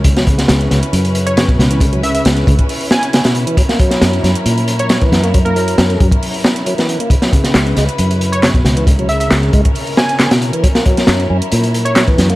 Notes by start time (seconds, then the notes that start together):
Already playing: C#2 C#4
0.04 C#3 E4 B4, kick, closed hi-hat
0.16 F#3, snare, closed hi-hat
0.27 C#3, kick, closed hi-hat
0.38 snare, closed hi-hat
0.48 C#2, snare, closed hi-hat
0.61 closed hi-hat
0.71 C#2 C#3, snare, closed hi-hat
0.83 closed hi-hat
0.93 F#2, closed hi-hat
1.05 closed hi-hat
1.15 closed hi-hat
1.26 C#5, closed hi-hat
1.37 C#3 C#5, snare, closed hi-hat
1.48 B2, kick, closed hi-hat
1.59 C#2, snare, closed hi-hat
1.71 E3, closed hi-hat
1.80 C#3, kick, closed hi-hat
1.93 F#3, closed hi-hat
2.03 C#3 E5, closed hi-hat
2.15 E5, closed hi-hat
2.25 C#2, snare, closed hi-hat
2.37 closed hi-hat
2.47 C#2 C#3, kick, closed hi-hat
2.59 kick, closed hi-hat
2.69 closed hi-hat, open hi-hat
2.81 closed hi-hat
2.91 G#5, snare, closed hi-hat
3.03 closed hi-hat
3.13 C#3, snare, closed hi-hat
3.24 B2, snare, closed hi-hat
3.35 closed hi-hat
3.47 E3, closed hi-hat
3.57 F#3 A#4, kick, closed hi-hat
3.69 A#3, snare, closed hi-hat
3.79 F#3, kick, closed hi-hat
3.91 snare, closed hi-hat
4.01 F#2, snare, closed hi-hat
4.13 closed hi-hat
4.24 F#2 F#3, snare, closed hi-hat
4.35 closed hi-hat
4.46 A#2, closed hi-hat
4.58 closed hi-hat
4.68 closed hi-hat
4.79 C#5, closed hi-hat
4.89 F#3 C#5, snare, closed hi-hat
5.01 E3, kick, closed hi-hat
5.12 F#2, snare, closed hi-hat
5.23 A#3, closed hi-hat
5.34 F#3, kick, closed hi-hat
5.45 A#3 A#4, closed hi-hat
5.56 F#3, closed hi-hat
5.68 closed hi-hat
5.78 F#2, snare, closed hi-hat
5.90 closed hi-hat
6.00 F#2 F#3, kick, closed hi-hat
6.11 kick, closed hi-hat
6.23 closed hi-hat, open hi-hat
6.34 closed hi-hat
6.44 snare, closed hi-hat
6.56 closed hi-hat
6.66 F#3, closed hi-hat
6.78 E3, snare, closed hi-hat
6.89 closed hi-hat
7.00 A#3, closed hi-hat
7.10 C#3 C#4 B4, kick, closed hi-hat
7.22 F#3, snare, closed hi-hat
7.33 C#3, kick, closed hi-hat
7.44 snare, closed hi-hat
7.54 C#2, snare, clap, closed hi-hat
7.67 closed hi-hat
7.76 C#2 G#3, snare, closed hi-hat
7.89 closed hi-hat
7.98 F#2, closed hi-hat
8.11 closed hi-hat
8.21 closed hi-hat
8.32 C#5, closed hi-hat
8.42 C#3 C#5, snare, clap, closed hi-hat
8.54 B2, kick, closed hi-hat
8.65 C#2, snare, closed hi-hat
8.77 E3, closed hi-hat
8.87 C#3 A#4, kick, closed hi-hat
8.99 F#3, closed hi-hat
9.09 C#3 E5, closed hi-hat
9.20 E5, closed hi-hat
9.31 C#2, snare, clap, closed hi-hat
9.43 closed hi-hat
9.53 C#2 G#3, kick, closed hi-hat
9.65 kick, closed hi-hat
9.75 closed hi-hat, open hi-hat
9.87 closed hi-hat
9.97 G#5, snare, closed hi-hat
10.09 closed hi-hat
10.19 C#3, snare, clap, closed hi-hat
10.31 B2, snare, closed hi-hat
10.42 closed hi-hat
10.53 E3, closed hi-hat
10.64 F#3 E4, kick, closed hi-hat
10.75 A#3, snare, closed hi-hat
10.86 F#3, kick, closed hi-hat
10.97 snare, closed hi-hat
11.07 F#2, snare, clap, closed hi-hat
11.20 closed hi-hat
11.30 F#2 C#4
11.42 closed hi-hat
11.52 A#2, closed hi-hat
11.63 closed hi-hat
11.74 closed hi-hat
11.85 C#5, closed hi-hat
11.95 F#3 C#5, snare, clap, closed hi-hat
12.08 E3, kick, closed hi-hat
12.18 F#2, snare, closed hi-hat
12.30 A#3, closed hi-hat